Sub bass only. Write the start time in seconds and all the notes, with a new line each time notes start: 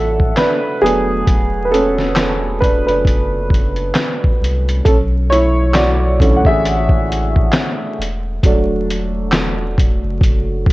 Already playing: A1
0.82 E1
1.28 E1
2.88 F#1
4.41 C2
4.86 B1
6.45 A1
7.99 E1
8.43 E1
10.04 F#1